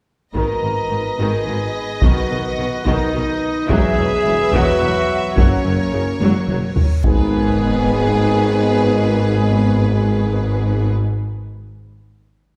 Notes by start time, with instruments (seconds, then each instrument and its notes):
0.34 double bass section G#1, tuba G#1, cello section G#2, trombone section D#3 B3, viola section D#3, french horn section A#4, violin section B4 D#5, trumpet section A#5, taiko
0.62 double bass section G#1, tuba G#1, cello section G#2, viola section D#3
0.90 double bass section G#1, tuba G#1, cello section G#2, viola section D#3
1.18 tuba G#1, double bass section G#1, cello section G#2, viola section D#3, trumpet section G#4, french horn section G#4
1.46 double bass section G#1, tuba G#1, cello section G#2, viola section D#3
2.01 tuba B1, double bass section B1, cello section B2, viola section D#3, trumpet section F#4, french horn section F#4, taiko
2.30 tuba B1, double bass section B1, cello section B2, viola section D#3
2.58 tuba B1, double bass section B1, cello section B2, viola section D#3
2.84 tuba B1, double bass section B1, cello section B2, viola section D#3, french horn section D#4, trumpet section D#4, taiko
3.12 tuba B1, double bass section B1, cello section B2, viola section D#3
3.68 tuba E1, double bass section E1, cello section E2, viola section F#3, trombone section F#3 B3, french horn section G#4, trumpet section G#4, violin section B4 E5, taiko
3.97 tuba E1, double bass section E1, cello section E2, viola section F#3
4.25 double bass section E1, tuba E1, cello section E2, viola section E3
4.52 tuba E1, double bass section E1, cello section E2, viola section F#3, french horn section F#4, trumpet section F#4, taiko
4.81 tuba E1, double bass section E1, cello section E2, viola section F#3
5.35 tuba F#1, double bass section F#1, cello section F#2, viola section F#3, trombone section A#3, french horn section C#4, trumpet section C#4, violin section A#4 C#5, taiko, reverse cymbal
5.64 double bass section F#1, tuba F#1, cello section F#2, viola section F#3
5.92 double bass section F#1, tuba F#1, cello section F#2, viola section C#3
6.20 double bass section F#1, tuba F#1, cello section F#2, viola section F#3, taiko high
6.48 tuba F#1, double bass section F#1, cello section F#2, viola section F#3, taiko mid
6.76 taiko low
7.04 tuba G#1, double bass section G#1, cello section G#2, trombone section D#3 B3, french horn section G#3, viola section B3, trumpet section G#4, violin section G#4 B4, taiko, sub drop